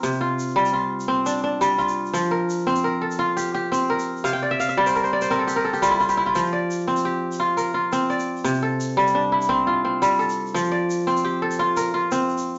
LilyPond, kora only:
<<
  \new Staff \with { instrumentName = "Kora" } { \time 12/8 \key f \major \tempo 4. = 114 << { r1. | r1. | f''16 g''16 d''16 e''16 f''16 e''16 d''16 c''16 bes'16 c''16 d''16 c''16 bes'16 a'16 g'16 bes'16 a'16 g'16 f'16 e'16 f'16 g'16 e'16 f'16~ | f'16 r1 r4. r16 |
r1. | r1. | } \\ { bes'8 f'4. f'4. d'8 d'4 f'4~ | f'8 bes'4. bes'8 a'4 g'8 g'4 bes'4~ | bes'8 r1 r4. | r8 d''4. g'4. bes'8 f'4 d''4~ |
d''8 a'4. d'8 e'4 f'8 c'4 a'4~ | a'8 d''4. g'8 a'4 bes'8 f'4. r8 | } >> }
  \new Staff \with { instrumentName = "Kora" } { \time 12/8 \key f \major c4 r8 g4 r8 c'4 r8 g4 r8 | f4 r8 c'4 r8 f'4 r8 c'4 r8 | c4 r8 g4 r8 c'4 r8 g4 r8 | f4 r8 c'4 r8 f'4 r8 c'4 r8 |
c4 r8 g4 r8 c'4 r8 g4 r8 | f4 r8 c'4 r8 f'4 r8 c'4 r8 | }
>>